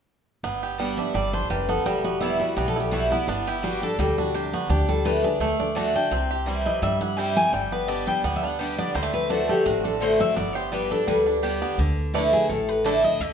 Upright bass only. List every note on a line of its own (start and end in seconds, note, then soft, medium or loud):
0.43 0.98 G1 medium
1.14 1.45 G1 medium
1.50 1.80 F#1 medium
1.86 2.40 E1 medium
2.57 3.11 B1 medium
3.28 3.82 G1 medium
3.99 4.53 D2 medium
4.69 5.24 D2 medium
5.40 5.94 D2 medium
6.11 6.66 C2 medium
6.82 7.37 G2 medium
7.53 8.07 G1 medium
8.24 8.78 D2 medium
8.95 9.49 D2 medium
9.66 10.20 A1 medium
10.37 10.91 G1 medium
11.08 11.62 D2 medium
11.78 12.33 D2 medium
12.49 13.04 A1 medium
13.20 13.33 D2 medium